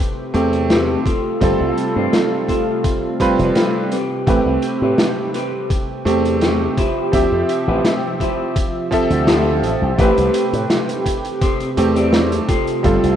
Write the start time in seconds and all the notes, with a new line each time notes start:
Already playing: C3 A3 C4 G4 B4
0.34 E2 A3 C4 G4, closed hi-hat
0.53 closed hi-hat
0.69 C4 G4 B4, snare, closed hi-hat
1.05 A3 C4 F4 A4, kick, closed hi-hat
1.41 G1 G3 C4 F4 A4, kick, closed hi-hat
1.60 C2
1.78 closed hi-hat
1.96 G2 C4 F4 C5
2.13 snare, closed hi-hat
2.49 C4 F4 A4, kick, closed hi-hat
2.84 kick, closed hi-hat
3.20 G3 C4 F4 B4, muted clean electric guitar stroke, kick, closed hi-hat
3.39 F1, closed hi-hat
3.55 C4 F4 A4, snare, closed hi-hat
3.92 C4 G4 B4, closed hi-hat
4.27 A1 A3 C4 G4 B4, kick, closed hi-hat
4.46 C2
4.62 closed hi-hat
4.82 A2 C4 G4 B4
4.98 snare, closed hi-hat
5.34 C4 G4 B4, closed hi-hat
5.70 kick, closed hi-hat
6.05 E2 A3 C4 G4, closed hi-hat
6.25 closed hi-hat
6.41 C4 G4 B4, snare, closed hi-hat
6.77 F3 E4 F4 G4 C5 E5, kick, closed hi-hat
7.12 D2 F3 C4 G4 E5, kick, closed hi-hat
7.32 F2
7.49 closed hi-hat
7.67 A1 E4 F4 G4 B4
7.85 snare, closed hi-hat
8.20 E4 F4 G4 C5, kick, closed hi-hat
8.56 kick, closed hi-hat
8.91 F3 C4 A4 E5, muted clean electric guitar stroke, kick, closed hi-hat
9.10 D2, closed hi-hat
9.27 E4 F4 G4 A4, snare, closed hi-hat
9.63 A1, closed hi-hat
9.81 C2, muted clean electric guitar stroke
9.98 A1 C3 A3 C4 G4 A4 B4, kick, closed hi-hat
10.18 C2, closed hi-hat
10.34 closed hi-hat
10.53 A2, closed hi-hat
10.70 snare, closed hi-hat
10.88 muted clean electric guitar stroke, closed hi-hat
11.06 muted clean electric guitar stroke, kick, closed hi-hat
11.25 closed hi-hat
11.41 C4 G4 A4 C5, kick, closed hi-hat
11.60 closed hi-hat
11.77 E2 A3 C4 G4, closed hi-hat
11.95 C4 G4 A4 D5, closed hi-hat
12.13 snare, closed hi-hat
12.32 closed hi-hat
12.48 A3 F4 G4 A4 C5, kick, closed hi-hat
12.67 closed hi-hat
12.83 G1 G3 C4 F4 A4, kick, closed hi-hat
13.03 C2, closed hi-hat